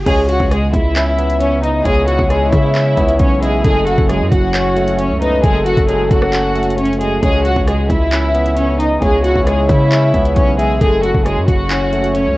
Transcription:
0.06 808-style bass C#2, tine electric piano C#3, ambient pad C#3 B3 E4, violin section G#3 G#4, soft synth lead C#5, kick, closed hi-hat, crash
0.29 violin section F#4 F#5, closed hi-hat
0.40 808-style bass C#2, kick
0.51 tine electric piano G#3, violin section G#3 G#4, cross-stick, closed hi-hat
0.73 808-style bass C#2, violin section E4 E5, kick, closed hi-hat
0.96 tine electric piano C#4, soft synth lead E5, clap, closed hi-hat
1.18 tine electric piano B3, closed hi-hat
1.30 closed hi-hat
1.40 violin section C#4 C#5, closed hi-hat
1.63 violin section D#4 D#5, soft synth lead D#5, closed hi-hat
1.85 808-style bass C#2, tine electric piano C#3, violin section G#3 G#4, ambient pad C#4, soft synth lead C#5, kick, closed hi-hat
2.08 violin section F#4 F#5, closed hi-hat
2.19 808-style bass C#2, kick
2.30 tine electric piano G#3, violin section G#3 G#4, cross-stick, closed hi-hat
2.53 808-style bass C#3, violin section E4 E5, kick, closed hi-hat
2.75 tine electric piano C#4, clap, closed hi-hat
2.97 808-style bass C#2, tine electric piano B3, kick, closed hi-hat
3.09 closed hi-hat
3.19 808-style bass B1, violin section C#4 C#5, kick, closed hi-hat
3.42 violin section G#3 G#4, soft synth lead E5, closed hi-hat
3.64 808-style bass F#1, tine electric piano F#2, ambient pad F#3 A4, violin section G#3 G#4, soft synth lead A4, kick, closed hi-hat
3.87 violin section F#4 F#5, closed hi-hat
3.98 808-style bass F#1, kick
4.09 tine electric piano F#3, violin section G#3 G#4, cross-stick, closed hi-hat
4.21 808-style bass F#2
4.32 808-style bass F#1, violin section F#4 F#5, kick, closed hi-hat
4.54 tine electric piano C#4, soft synth lead C#5, clap, closed hi-hat
4.76 tine electric piano A3, closed hi-hat
4.88 closed hi-hat
4.99 violin section C#4 C#5, closed hi-hat
5.10 808-style bass C#2
5.21 violin section D#4 D#5, soft synth lead B4, closed hi-hat
5.44 808-style bass F#1, tine electric piano F#2, violin section G#3 G#4, soft synth lead A4, kick, closed hi-hat
5.66 violin section F#4 F#5, closed hi-hat
5.77 808-style bass F#1, kick, closed hi-hat
5.88 tine electric piano F#3, violin section G#3 G#4, closed hi-hat
6.11 808-style bass F#1, violin section F#4 F#5, kick, closed hi-hat
6.22 cross-stick
6.33 tine electric piano C#4, clap, closed hi-hat
6.55 tine electric piano A3, closed hi-hat
6.63 closed hi-hat
6.70 closed hi-hat
6.78 violin section C#4 C#5, closed hi-hat
6.86 closed hi-hat
6.93 closed hi-hat
7.00 violin section G#3 G#4, closed hi-hat
7.23 808-style bass C#2, tine electric piano C#3, ambient pad C#3 B3 E4, violin section G#3 G#4, soft synth lead C#5, kick, closed hi-hat
7.45 violin section F#4 F#5, closed hi-hat
7.56 808-style bass C#2, kick
7.67 tine electric piano G#3, violin section G#3 G#4, cross-stick, closed hi-hat
7.90 808-style bass C#2, violin section E4 E5, kick, closed hi-hat
8.12 tine electric piano C#4, soft synth lead E5, clap, closed hi-hat
8.35 tine electric piano B3, closed hi-hat
8.46 closed hi-hat
8.57 violin section C#4 C#5, closed hi-hat
8.79 violin section D#4 D#5, soft synth lead D#5, closed hi-hat
9.02 808-style bass C#2, tine electric piano C#3, violin section G#3 G#4, ambient pad C#4, soft synth lead C#5, kick, closed hi-hat
9.24 violin section F#4 F#5, closed hi-hat
9.35 808-style bass C#2, kick
9.47 tine electric piano G#3, violin section G#3 G#4, cross-stick, closed hi-hat
9.69 808-style bass C#3, violin section E4 E5, kick, closed hi-hat
9.91 tine electric piano C#4, clap, closed hi-hat
10.14 808-style bass C#2, tine electric piano B3, kick, closed hi-hat
10.25 closed hi-hat
10.36 808-style bass B1, violin section C#4 C#5, kick, closed hi-hat
10.58 violin section G#3 G#4, soft synth lead E5, closed hi-hat
10.81 808-style bass F#1, tine electric piano F#2, ambient pad F#3 A4, violin section G#3 G#4, soft synth lead A4, kick, closed hi-hat
11.03 violin section F#4 F#5, closed hi-hat
11.14 808-style bass F#1, kick
11.26 tine electric piano F#3, violin section G#3 G#4, cross-stick, closed hi-hat
11.37 808-style bass F#2
11.48 808-style bass F#1, violin section F#4 F#5, kick, closed hi-hat
11.70 tine electric piano C#4, soft synth lead C#5, clap, closed hi-hat
11.93 tine electric piano A3, closed hi-hat
12.04 closed hi-hat
12.15 violin section C#4 C#5, closed hi-hat
12.26 808-style bass C#2

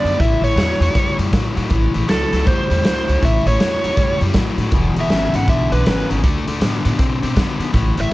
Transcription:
Already playing: lead electric guitar D5
0.05 upright bass F#2, overdriven electric guitar D3 B3, closed hi-hat
0.18 upright bass A1, overdriven electric guitar A2 E3, lead electric guitar E5, kick, closed hi-hat
0.41 upright bass A1, overdriven electric guitar A2 E3, lead electric guitar C#5, closed hi-hat
0.56 upright bass E2, overdriven electric guitar A2 F#3, snare, closed hi-hat
0.80 upright bass E2, overdriven electric guitar A2 F#3, closed hi-hat
0.94 upright bass F#2, overdriven electric guitar A2 G3, kick, closed hi-hat
1.18 upright bass F#2, overdriven electric guitar A2 G3, closed hi-hat
1.32 overdriven electric guitar A2 F#3, upright bass A2, kick, snare, closed hi-hat
1.56 overdriven electric guitar A2 F#3, upright bass A2, closed hi-hat
1.70 upright bass A1, overdriven electric guitar A2 E3, kick, closed hi-hat
1.94 upright bass A1, overdriven electric guitar A2 E3, closed hi-hat
2.08 upright bass C#2, overdriven electric guitar A2 F#3, lead electric guitar A4, snare, closed hi-hat
2.32 upright bass C#2, overdriven electric guitar A2 F#3, snare, closed hi-hat
2.46 upright bass E2, overdriven electric guitar A2 G3, lead electric guitar C5, kick, closed hi-hat
2.70 upright bass E2, overdriven electric guitar A2 G3, closed hi-hat
2.83 upright bass C#2, overdriven electric guitar A2 F#3, snare, closed hi-hat
2.87 lead electric guitar C5
3.08 upright bass C#2, overdriven electric guitar A2 F#3, closed hi-hat
3.22 upright bass A1, overdriven electric guitar A2 E3, lead electric guitar E5, kick, closed hi-hat
3.46 upright bass A1, overdriven electric guitar A2 E3, lead electric guitar C#5, closed hi-hat
3.60 upright bass E2, overdriven electric guitar A2 F#3, snare, closed hi-hat
3.84 upright bass E2, overdriven electric guitar A2 F#3, closed hi-hat
3.97 upright bass F#2, overdriven electric guitar A2 G3, kick, closed hi-hat
4.21 upright bass F#2, overdriven electric guitar A2 G3, closed hi-hat
4.34 upright bass A2, overdriven electric guitar A2 F#3, kick, snare, closed hi-hat
4.58 upright bass A2, overdriven electric guitar A2 F#3, closed hi-hat
4.71 upright bass E1, overdriven electric guitar E2 B2, kick, closed hi-hat
4.96 upright bass E1, overdriven electric guitar E2 B2, closed hi-hat
5.01 lead electric guitar E5
5.09 upright bass G#1, overdriven electric guitar E2 C#3, snare, closed hi-hat
5.33 upright bass G#1, overdriven electric guitar E2 C#3, lead electric guitar F#5, closed hi-hat
5.48 upright bass B1, overdriven electric guitar E2 D3, lead electric guitar E5, kick, closed hi-hat
5.72 upright bass B1, overdriven electric guitar E2 D3, lead electric guitar B4, closed hi-hat
5.86 upright bass G#1, overdriven electric guitar E2 C#3, snare, closed hi-hat
6.09 upright bass G#1, overdriven electric guitar E2 C#3, closed hi-hat
6.23 upright bass D2, overdriven electric guitar D3 A3, kick, closed hi-hat
6.47 upright bass D2, overdriven electric guitar D3 A3, closed hi-hat
6.61 upright bass A2, overdriven electric guitar D3 B3, snare, closed hi-hat
6.84 upright bass A2, overdriven electric guitar D3 B3, closed hi-hat
6.98 upright bass B2, overdriven electric guitar D3 C4, kick, closed hi-hat
7.22 upright bass B2, overdriven electric guitar D3 C4, closed hi-hat
7.35 overdriven electric guitar D3 B3, upright bass D3, kick, snare, closed hi-hat
7.59 overdriven electric guitar D3 B3, upright bass D3, closed hi-hat
7.73 upright bass A1, overdriven electric guitar A2 E3, kick, closed hi-hat
7.97 upright bass A1, overdriven electric guitar A2 E3, lead electric guitar E5, closed hi-hat

